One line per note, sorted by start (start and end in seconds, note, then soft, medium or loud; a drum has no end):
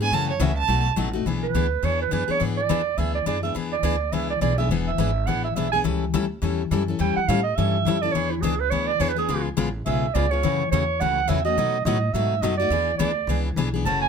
0.00 0.10 G#2 loud
0.00 0.12 B3 medium
0.00 0.12 D4 medium
0.00 0.11 G#4 medium
0.00 0.15 G#5 loud
0.11 0.39 F#2 medium
0.11 0.31 C#3 medium
0.11 0.31 E3 medium
0.11 0.31 A3 medium
0.11 0.32 C#4 medium
0.11 0.32 F#4 medium
0.11 0.30 A5 loud
0.30 0.43 C#5 medium
0.40 0.68 C#2 loud
0.40 0.50 C#3 medium
0.40 0.51 E3 loud
0.40 0.51 A3 loud
0.40 0.51 C#4 loud
0.40 0.51 F#4 loud
0.40 0.57 E5 medium
0.58 0.84 A5 loud
0.68 0.96 B1 loud
0.68 0.87 B2 medium
0.68 0.88 F#3 medium
0.68 0.88 A3 medium
0.68 0.88 D#4 medium
0.68 0.88 F#4 medium
0.96 1.25 A1 medium
0.96 1.07 B2 medium
0.96 1.08 F#3 medium
0.96 1.08 A3 medium
0.96 1.08 D#4 medium
0.96 1.08 F#4 loud
1.13 1.26 A3 medium
1.13 1.26 D#4 medium
1.13 1.25 F#4 medium
1.25 1.54 B1 medium
1.25 1.45 E3 medium
1.25 1.46 B3 medium
1.25 1.46 D4 medium
1.25 1.46 G#4 medium
1.43 1.86 B4 medium
1.54 1.82 D2 medium
1.54 1.65 E3 medium
1.54 1.65 B3 medium
1.54 1.66 D4 medium
1.54 1.66 G#4 medium
1.83 2.11 E2 medium
1.83 2.02 E3 medium
1.83 2.02 B3 medium
1.83 2.03 D4 medium
1.83 2.03 G#4 medium
1.83 2.01 C#5 medium
2.02 2.12 B4 medium
2.11 2.28 F#2 medium
2.11 2.22 E3 medium
2.11 2.23 B3 medium
2.11 2.23 D4 medium
2.11 2.23 G#4 medium
2.11 2.33 B4 medium
2.28 2.39 B3 soft
2.28 2.39 D4 medium
2.28 2.40 G#4 medium
2.28 2.42 C#5 medium
2.28 muted upright bass stroke soft
2.40 2.69 G#2 medium
2.40 2.59 E3 medium
2.40 2.60 B3 medium
2.40 2.60 D4 medium
2.40 2.60 G#4 medium
2.57 2.99 D5 medium
2.69 2.97 E2 medium
2.69 2.80 E3 medium
2.69 2.80 B3 medium
2.69 2.81 D4 loud
2.69 2.81 G#4 medium
2.98 3.26 D2 medium
2.98 3.17 E3 medium
2.98 3.17 B3 medium
2.98 3.18 D4 medium
2.98 3.18 G#4 medium
2.98 3.14 E5 medium
3.15 3.26 D5 medium
3.26 3.54 F#2 medium
3.26 3.37 E3 medium
3.26 3.37 B3 medium
3.26 3.37 D4 medium
3.26 3.38 G#4 medium
3.26 3.43 D5 medium
3.43 3.54 B3 medium
3.43 3.55 D4 soft
3.43 3.55 G#4 medium
3.43 3.55 E5 medium
3.55 3.82 E2 medium
3.55 3.74 E3 medium
3.55 3.75 B3 medium
3.55 3.75 D4 medium
3.55 3.75 G#4 medium
3.73 4.14 D5 medium
3.83 4.11 D2 medium
3.83 3.94 E3 loud
3.83 3.94 B3 medium
3.83 3.95 D4 medium
3.83 3.95 G#4 loud
4.12 4.40 C#2 medium
4.12 4.32 E3 medium
4.12 4.32 B3 medium
4.12 4.32 D4 medium
4.12 4.32 G#4 medium
4.12 4.30 E5 medium
4.30 4.41 D5 medium
4.41 4.69 B1 loud
4.41 4.52 E3 medium
4.41 4.52 B3 medium
4.41 4.52 D4 medium
4.41 4.53 G#4 medium
4.41 4.57 D5 medium
4.58 4.70 B3 medium
4.58 4.70 D4 soft
4.58 4.70 G#4 medium
4.58 4.69 E5 medium
4.69 4.97 E1 medium
4.69 4.90 E3 medium
4.69 4.90 B3 medium
4.69 4.90 D4 medium
4.69 4.90 G#4 medium
4.88 5.28 E5 medium
4.98 5.26 G#1 medium
4.98 5.09 E3 medium
4.98 5.09 B3 medium
4.98 5.10 D4 medium
4.98 5.10 G#4 loud
5.27 5.55 A1 medium
5.27 5.46 E3 medium
5.27 5.47 B3 medium
5.27 5.47 D4 medium
5.27 5.47 G#4 medium
5.27 5.44 F#5 medium
5.45 5.55 E5 medium
5.56 5.84 B1 medium
5.56 5.67 E3 medium
5.56 5.67 B3 medium
5.56 5.67 D4 medium
5.56 5.68 G#4 medium
5.56 5.71 E5 medium
5.72 5.84 B3 soft
5.72 5.85 D4 medium
5.72 5.84 G#4 medium
5.72 5.79 G#5 loud
5.84 6.13 C#2 medium
5.84 6.03 E3 medium
5.84 6.04 G3 medium
5.84 6.04 C#4 medium
5.84 6.04 E4 medium
5.84 6.04 A4 medium
6.14 6.41 D2 medium
6.14 6.24 E3 medium
6.14 6.24 G3 medium
6.14 6.24 C#4 medium
6.14 6.25 E4 loud
6.14 6.25 A4 loud
6.42 6.70 E2 medium
6.42 6.61 E3 medium
6.42 6.61 G3 medium
6.42 6.61 C#4 medium
6.42 6.62 E4 medium
6.42 6.62 A4 medium
6.71 6.99 F#2 medium
6.71 6.82 E3 medium
6.71 6.82 G3 medium
6.71 6.82 C#4 medium
6.71 6.82 E4 medium
6.71 6.82 A4 medium
6.88 6.99 C#4 soft
6.88 6.99 E4 medium
6.88 6.99 A4 medium
6.99 7.15 E2 medium
6.99 7.18 E3 medium
6.99 7.18 G3 medium
6.99 7.19 C#4 medium
6.99 7.19 E4 medium
6.99 7.19 A4 medium
6.99 7.16 G5 medium
7.17 7.30 F#5 loud
7.17 muted upright bass stroke soft
7.28 7.56 A2 loud
7.28 7.39 E3 medium
7.28 7.39 G3 medium
7.28 7.39 C#4 medium
7.28 7.39 E4 loud
7.28 7.40 A4 loud
7.28 7.43 F5 medium
7.44 7.57 D#5 loud
7.56 7.85 G2 medium
7.56 7.76 E3 medium
7.56 7.76 G3 medium
7.56 7.77 C#4 medium
7.56 7.77 E4 medium
7.56 7.77 A4 medium
7.56 8.04 E5 loud
7.85 8.13 F#2 medium
7.85 7.96 E3 medium
7.85 7.97 G3 medium
7.85 7.97 C#4 medium
7.85 7.97 E4 medium
7.85 7.97 A4 medium
8.02 8.15 C#4 soft
8.02 8.14 E4 medium
8.02 8.14 A4 medium
8.02 8.14 D5 loud
8.12 8.42 E2 medium
8.12 8.33 E3 medium
8.12 8.34 B3 medium
8.12 8.34 D4 medium
8.12 8.34 G#4 medium
8.12 8.32 C#5 medium
8.31 8.43 E4 medium
8.42 8.70 C#2 loud
8.42 8.53 E3 medium
8.42 8.54 B3 medium
8.42 8.54 D4 loud
8.42 8.62 G#4 medium
8.42 8.54 G#4 loud
8.60 8.72 B4 medium
8.71 8.99 D2 medium
8.71 8.90 E3 medium
8.71 8.91 B3 medium
8.71 8.91 D4 medium
8.71 8.91 G#4 medium
8.71 8.89 C#5 medium
8.87 9.02 D5 loud
9.00 9.28 E2 medium
9.00 9.10 E3 medium
9.00 9.11 B3 medium
9.00 9.11 D4 medium
9.00 9.11 G#4 medium
9.00 9.11 C#5 medium
9.09 9.18 B4 medium
9.16 9.28 B3 soft
9.16 9.29 D4 medium
9.16 9.28 G#4 medium
9.16 9.45 G#4 medium
9.28 9.56 C#2 medium
9.28 9.47 C#3 medium
9.28 9.48 G#3 medium
9.28 9.48 B3 medium
9.28 9.48 F4 medium
9.28 9.48 G#4 medium
9.57 9.85 A1 loud
9.57 9.67 C#3 medium
9.57 9.68 G#3 loud
9.57 9.68 B3 medium
9.57 9.68 F4 loud
9.57 9.68 G#4 loud
9.86 10.14 B1 medium
9.86 10.05 C#3 medium
9.86 10.05 G#3 medium
9.86 10.05 B3 medium
9.86 10.05 F4 medium
9.86 10.05 G#4 medium
9.86 10.16 E5 medium
10.14 10.42 C#2 medium
10.14 10.25 C#3 medium
10.14 10.25 G#3 medium
10.14 10.25 B3 medium
10.14 10.26 F4 medium
10.14 10.26 G#4 medium
10.14 10.33 D5 medium
10.31 10.44 B3 soft
10.31 10.43 F4 medium
10.31 10.42 G#4 medium
10.31 10.71 C#5 medium
10.43 10.71 F#2 medium
10.43 10.62 C#3 medium
10.43 10.62 E3 medium
10.43 10.62 A3 medium
10.43 10.63 C#4 medium
10.43 10.63 F#4 medium
10.71 10.99 E2 medium
10.71 10.83 C#3 medium
10.71 10.83 E3 medium
10.71 10.83 A3 medium
10.71 10.83 C#4 medium
10.71 10.83 F#4 loud
10.71 11.02 C#5 medium
11.01 11.28 C#2 loud
11.01 11.19 C#3 medium
11.01 11.20 E3 medium
11.01 11.20 A3 medium
11.01 11.20 C#4 medium
11.01 11.20 F#4 medium
11.01 11.30 F#5 loud
11.28 11.57 E2 medium
11.28 11.39 C#3 medium
11.28 11.39 E3 medium
11.28 11.39 A3 medium
11.28 11.39 C#4 medium
11.28 11.39 F#4 medium
11.28 11.45 E5 medium
11.45 11.57 A3 medium
11.45 11.57 C#4 medium
11.45 11.56 F#4 medium
11.45 11.83 D#5 loud
11.57 11.85 B2 medium
11.57 11.76 B2 medium
11.57 11.76 F#3 medium
11.57 11.77 A3 medium
11.57 11.77 D#4 medium
11.57 11.77 F#4 medium
11.85 12.13 A2 loud
11.85 11.97 B2 medium
11.85 11.97 F#3 medium
11.85 11.97 A3 loud
11.85 11.97 D#4 medium
11.85 11.97 F#4 loud
11.85 12.15 D#5 medium
12.13 12.42 G#2 medium
12.13 12.33 B2 medium
12.13 12.34 F#3 medium
12.13 12.34 A3 medium
12.13 12.34 D#4 medium
12.13 12.34 F#4 medium
12.13 12.43 E5 medium
12.42 12.70 F#2 loud
12.42 12.53 B2 medium
12.42 12.54 F#3 medium
12.42 12.54 A3 loud
12.42 12.54 D#4 medium
12.42 12.54 F#4 loud
12.42 12.57 D#5 medium
12.57 12.71 D#4 medium
12.57 12.71 F#4 medium
12.57 12.96 D5 loud
12.62 12.71 A3 medium
12.70 12.98 E2 medium
12.70 12.90 E3 medium
12.70 12.90 B3 medium
12.70 12.90 D4 medium
12.70 12.91 G#4 medium
12.98 13.27 D2 loud
12.98 13.10 E3 medium
12.98 13.10 B3 loud
12.98 13.11 D4 loud
12.98 13.11 G#4 loud
12.98 13.41 D5 medium
13.27 13.56 C#2 loud
13.27 13.48 E3 medium
13.27 13.48 B3 medium
13.27 13.48 D4 medium
13.27 13.48 G#4 medium
13.56 13.84 B1 loud
13.56 13.68 E3 medium
13.56 13.68 B3 medium
13.56 13.68 D4 medium
13.56 13.68 G#4 loud
13.74 13.86 B3 soft
13.74 13.86 D4 medium
13.74 13.85 G#4 medium
13.85 14.09 F#1 medium
13.85 14.05 C#3 medium
13.85 14.05 E3 medium
13.85 14.05 A3 medium
13.85 14.05 C#4 medium
13.85 14.05 F#4 medium
13.85 14.01 A5 medium
14.02 14.09 G#5 loud